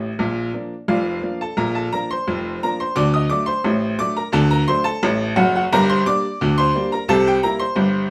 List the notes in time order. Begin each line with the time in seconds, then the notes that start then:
Already playing: A1 A2
0.19 A#1 A#2
0.54 F3 A#3 D4
0.88 F1 F2 F4 D5 F5
1.22 F3 A#3 D4
1.41 A4 A5
1.57 A#1 A#2 A#4 A#5
1.75 A4 A5
1.92 F3 A#3 D4 A#4 A#5
2.11 C5 C6
2.27 F1 F2
2.63 F3 A#3 D4 A#4 A#5
2.80 C5 C6
2.96 D2 D3 D5 D6
3.14 D#5 D#6
3.29 F#3 A3 D4 D5 D6
3.46 C5 C6
3.64 A1 A2
3.98 F#3 A3 D4 D5 D6
4.17 A#4 A#5
4.32 D2 D3 A4 A5
4.51 A#4 A#5
4.67 F#3 A3 D4 C5 C6
4.84 A4 A5
5.03 A1 A2
5.36 F#1 F#2 F#4 F#5
5.55 F#4 F#5
5.72 G1 G2 A#4 A#5
5.89 C5 C6
6.06 G3 A#3 D4 D5 D6
6.41 D2 D3
6.58 C5 C6
6.74 G3 A#3 D4
6.92 A#4 A#5
7.08 C2 C3 A4 A5
7.27 G4 G5
7.43 G3 A#3 E4 A#4 A#5
7.59 C5 C6
7.76 G1 G2